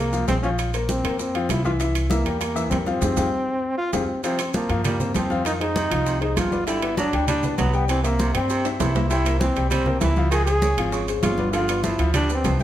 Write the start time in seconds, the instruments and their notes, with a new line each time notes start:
Already playing: upright bass C2, trombone A#3
0.12 upright piano F3 F4 F5, high bongo, high conga, maracas
0.28 upright bass A#1, upright piano G#3 G#4 C5, trombone C4, high bongo, low bongo, high conga, high timbale, low timbale, maracas
0.43 upright piano F3 F4 F5, trombone C#4, maracas
0.59 high bongo, high timbale, maracas
0.74 upright piano A#3 A#4 C5, high bongo, high conga, high timbale, maracas
0.89 trombone C4, high bongo, high conga, low timbale, maracas
1.04 upright bass F2, upright piano A#3 A#4 C5, high conga, high timbale, maracas
1.19 trombone C4, high bongo, high conga, maracas
1.34 upright piano F3 F4 F5, high bongo, high conga, high timbale
1.49 upright bass C2, trombone E4, high bongo, low bongo, high conga, high timbale, low timbale, maracas
1.64 upright piano E3 E4 E5, trombone F4, high bongo, high conga, maracas
1.80 upright piano E3 E4 E5, high bongo, high timbale, maracas
1.95 high bongo, high conga, high timbale, maracas
2.10 upright piano E3 E4 E5, trombone A#3, high bongo, high conga, low timbale, maracas
2.25 upright bass E2, upright piano G3 G4 A#4, high bongo, high conga, high timbale, maracas
2.40 trombone A#3, high bongo, high conga, high timbale, maracas
2.55 upright piano E3 E4 E5, high bongo, high conga, maracas
2.70 upright bass F2, upright piano G3 G4 A#4, trombone C4, high bongo, low bongo, high conga, high timbale, low timbale, maracas
2.86 upright piano F3 F4 F5, trombone C4, high conga, maracas
3.01 upright bass F2, upright piano F4 G4 G#4, high bongo, high conga, high timbale, maracas
3.17 upright bass F2, upright piano F4 G4 G#4, high bongo, high conga, high timbale, maracas
3.78 trombone F4
3.93 upright bass F2, trombone C4, upright piano F4 G4 G#4, high bongo, high conga, high timbale, maracas
4.24 baritone saxophone C3, upright piano F3 F4 F5, trombone C4, high bongo, high conga, high timbale, maracas
4.39 upright piano C4 C5, high bongo, high conga, high timbale, maracas
4.54 baritone saxophone F3, trombone A#3, high bongo, high conga, low timbale, maracas
4.69 upright bass G2, upright piano F3 F4 F5, high bongo, high conga, high timbale, maracas
4.85 baritone saxophone G3, trombone A#3, high bongo, high conga, low conga, high timbale, maracas
5.00 upright piano C4 C5, high bongo, high conga, low conga, maracas
5.15 upright bass F2, baritone saxophone F3, trombone C4, high bongo, low bongo, high conga, high timbale, low timbale, maracas
5.30 upright piano F3 F4 F5, high conga, maracas
5.45 baritone saxophone D#3, trombone D#4, high bongo, high conga, high timbale, maracas
5.60 upright piano G#3 G#4 C5, trombone D#4, high bongo, high conga, high timbale
5.75 baritone saxophone C3, high bongo, high conga, low timbale, maracas
5.91 upright bass C2, upright piano F3 F4 F5, high conga, high timbale, maracas
6.06 baritone saxophone C3, high bongo, high conga, maracas
6.21 upright piano G#3 G#4 C5, trombone D#4, high bongo, high conga, high timbale
6.36 upright bass G1, baritone saxophone C3, trombone F4, high bongo, low bongo, high conga, high timbale, low timbale, maracas
6.52 upright piano B3 B4 D5, high bongo, high conga, maracas
6.67 baritone saxophone D3, upright piano G3 G4 G5, trombone E4, high bongo, high conga, high timbale, maracas
6.82 upright piano B3 B4 D5, high bongo, high conga, high timbale
6.97 baritone saxophone F#3, trombone D4, high bongo, high conga, low timbale, maracas
7.13 upright bass D2, upright piano G3 G4 G5, high bongo, high conga, high timbale, maracas
7.28 baritone saxophone G3, trombone D4, high bongo, high conga, low conga, high timbale, maracas
7.43 upright piano B3 B4 D5, high bongo, high conga, low conga, maracas
7.58 upright bass C2, baritone saxophone F#3, trombone B3, high bongo, low bongo, high conga, high timbale, low timbale, maracas
7.73 upright piano G3 G4 G5, maracas
7.88 baritone saxophone E3, trombone C4, high bongo, high conga, high timbale, maracas
8.04 trombone A#3, upright piano C4 C5 E5, high bongo, high conga, high timbale, maracas
8.19 baritone saxophone C3, high bongo, high conga, low timbale, maracas
8.34 upright bass G2, upright piano G3 G4 G5, trombone C4, high conga, high timbale, maracas
8.50 baritone saxophone C3, high bongo, high conga, maracas
8.65 upright piano C4 C5 E5, high bongo, high conga, high timbale, maracas
8.80 upright bass C2, baritone saxophone C3, trombone E4, high bongo, low bongo, high conga, low timbale, maracas
8.95 upright piano A#3 A#4 C5, high bongo, high conga, low timbale, maracas
9.10 baritone saxophone C3, upright piano G3 G4 G5, trombone E4, high bongo, high conga, high timbale, maracas
9.26 upright piano A#3 A#4 C5, high bongo, high conga, high timbale, maracas
9.40 baritone saxophone E3, trombone C4, high bongo, high conga, low timbale, maracas
9.56 upright bass C2, upright piano G3 G4 G5, high bongo, high conga, high timbale, maracas
9.70 baritone saxophone G3, trombone C4, high bongo, high conga, low conga, high timbale, maracas
9.86 upright piano A#3 A#4 C5, high bongo, high conga, low conga
10.01 upright bass C#2, baritone saxophone E3, trombone E4, high bongo, low bongo, high conga, high timbale, low timbale, maracas
10.16 upright piano F3 F4 F5, high conga, maracas
10.31 baritone saxophone D#3, trombone G#4, high bongo, high timbale, maracas
10.46 upright piano G#3 G#4 C5, trombone G#4, high bongo, high conga, high timbale, maracas
10.62 baritone saxophone C#3, high bongo, high conga, low timbale, maracas
10.77 upright bass G#1, upright piano F3 F4 F5, high conga, high timbale, maracas
10.92 baritone saxophone C#3, high bongo, high conga, maracas
11.08 upright piano G#3 G#4 C5, high bongo, high conga, high timbale, maracas
11.23 upright bass G1, baritone saxophone C#3, trombone F4, high bongo, low bongo, high conga, high timbale, low timbale, maracas
11.38 upright piano B3 B4 D5, high bongo, high conga, maracas
11.53 baritone saxophone D3, upright piano F3 F4 F5, trombone F4, high bongo, high conga, high timbale, maracas
11.68 upright piano B3 B4 D5, high bongo, high conga, high timbale, maracas
11.83 baritone saxophone F3, trombone E4, high bongo, high conga, low timbale, maracas
11.98 upright bass D2, upright piano F3 F4 F5, high bongo, high conga, high timbale, maracas
12.14 baritone saxophone G3, trombone D4, high bongo, high conga, low conga, high timbale, maracas
12.29 upright piano B3 B4 D5, high bongo, high conga, maracas
12.35 trombone C4
12.44 upright bass C2, baritone saxophone F3, high bongo, low bongo, high conga, high timbale, low timbale, maracas
12.60 upright piano G3 G4, high conga